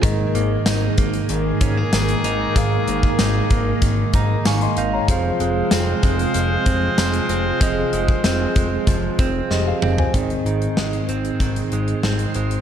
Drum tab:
HH |x-x-x-xxx-x-xxx-|x-x-x-x-x-x-xxx-|x-x-x-xxx-x-xxx-|x-x-x-x-x-x-----|
TB |----x-------x---|----x-------x---|----x-------x---|----x-----------|
SD |----o-------o---|----o-------o---|----o-------o---|----o-------o---|
T2 |----------------|----------------|----------------|--------------o-|
FT |----------------|----------------|----------------|---------------o|
BD |o-----o---o-----|o--o--o-o-o-----|o-----o---o-----|o--o--o-o-o-----|

HH |xxxx-xxxxxxx-xxx|
TB |----------------|
SD |----o-------o---|
T2 |----------------|
FT |----------------|
BD |o-------o-------|